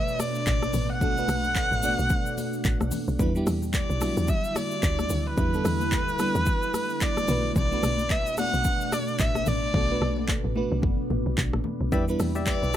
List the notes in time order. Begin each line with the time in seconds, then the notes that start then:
Already playing: B2 A3 B3 D4 F#4 B4 C#5 D5 E5
0.08 shaker
0.19 D5, cross-stick, open hi-hat, high conga, shaker
0.35 shaker
0.46 A1, kick, clap, shaker
0.62 cross-stick, high conga, shaker
0.73 A1, open hi-hat, high conga, low conga, shaker
0.90 F#5
1.01 B1 A3 B3 D4 F#4 A4, kick, low conga, shaker
1.17 A3 B3 D4 F#4 B4, shaker
1.28 B1, cross-stick, open hi-hat, high conga, shaker
1.44 high conga, shaker
1.55 kick, clap, shaker
1.71 A1, shaker
1.83 A3 B3 D4 F#4 D5, open hi-hat, high conga, shaker
1.99 B1, shaker
2.09 kick, low conga, shaker
2.26 shaker
2.38 open hi-hat, high conga, shaker
2.53 shaker
2.64 A1, kick, clap, shaker
2.81 B1, cross-stick, high conga, shaker
2.91 open hi-hat, high conga, low conga, shaker
3.08 B1, shaker
3.19 E2 D3 G3 B3 D4 E4 B4, kick, low conga, shaker
3.35 G3 B3 D4 E4 G4, shaker
3.47 E2, cross-stick, open hi-hat, high conga, shaker
3.62 high conga, shaker
3.73 D5, kick, clap, shaker
3.90 B1, shaker
4.01 F#3 B3 D4 E4 F#4, cross-stick, open hi-hat, high conga, shaker
4.08 G3
4.17 E2, shaker
4.27 E5, kick, low conga, shaker
4.44 shaker
4.56 D5, cross-stick, open hi-hat, high conga, shaker
4.71 shaker
4.83 D2, kick, clap, shaker
4.99 cross-stick, high conga, shaker
5.09 D2, open hi-hat, high conga, low conga, shaker
5.27 B4
5.37 E2 G3 B3 D4 E4 B4, kick, low conga, shaker
5.53 G3 B3 D4 E4 A4, shaker
5.65 E2, cross-stick, open hi-hat, high conga, shaker
5.80 high conga, shaker
5.92 kick, clap, shaker
6.08 D2, shaker
6.19 G3 B3 D4 E4 B4, cross-stick, open hi-hat, high conga, shaker
6.35 E2, shaker
6.46 kick, low conga, shaker
6.63 shaker
6.74 cross-stick, open hi-hat, high conga, shaker
6.89 shaker
7.01 D5, kick, clap, shaker
7.17 cross-stick, high conga, shaker
7.28 B1 B2 A3 B3 D4 F#4 B4, open hi-hat, high conga, low conga, shaker
7.56 B1 D5, kick, low conga, shaker
7.71 A3 B3 D4 F#4 B4, shaker
7.83 B1, cross-stick, open hi-hat, high conga, shaker
7.98 high conga, shaker
8.10 E5, kick, clap, shaker
8.26 F#1, shaker
8.37 A3 B3 D4 F#4 D5 F#5, cross-stick, open hi-hat, high conga, shaker
8.53 B1, shaker
8.64 kick, low conga, shaker
8.81 shaker
8.92 D5, cross-stick, open hi-hat, high conga, shaker
9.08 shaker
9.19 A1 E5, kick, clap, shaker
9.35 cross-stick, high conga, shaker
9.46 A1 B3 D5, open hi-hat, high conga, low conga, shaker
9.74 B1 A3 B3 D4 F#4 A4, kick, low conga
9.90 A3 B3 D4 F#4 B4
10.01 B1, cross-stick, high conga
10.17 high conga
10.28 kick, clap
10.44 A1
10.55 A3 B3 D4 F#4 B4, high conga
10.72 B1
10.82 F#1, kick, low conga
11.10 A1, high conga
11.26 B1
11.38 B1, kick, clap
11.53 A1, cross-stick, high conga
11.64 high conga, low conga
11.81 B1
11.92 E2 D3 G3 B3 D4 E4 G4 B4 D5 E5, kick, low conga, shaker
12.08 G3 B3 D4 E4 B4, shaker
12.20 E2, cross-stick, open hi-hat, high conga, shaker
12.35 G4 D5 E5, high conga, shaker
12.46 D5, kick, clap, shaker
12.63 B1, shaker